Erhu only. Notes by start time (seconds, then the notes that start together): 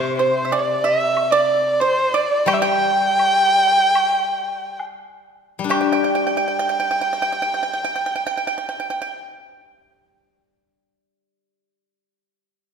Already playing: C5
0.18 C5
0.51 D5
0.84 E5
1.31 D5
1.80 C5
2.15 D5
2.47 G5
2.53 E5
2.62 G5
5.70 G5